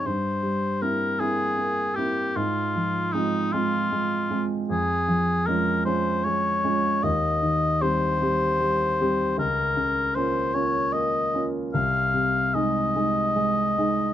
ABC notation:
X:1
M:12/8
L:1/8
Q:3/8=51
K:Cphr
V:1 name="Oboe"
c2 B A2 G F2 E F2 z | A2 B c d2 e2 c4 | B2 c d e z f2 e4 |]
V:2 name="Grand piano"
G,, G, [B,C=E] [B,CE] B, [B,CE] A,, F, [A,CF] [A,CF] A, [A,CF] | F,, F, [A,DF] [A,DF] A, [A,DF] E,, E, [G,CG] [G,CG] G, [G,CG] | D,, D, [B,DF] [B,DF] B, [B,DF] C,, C, [A,EA] [A,EA] A, [A,EA] |]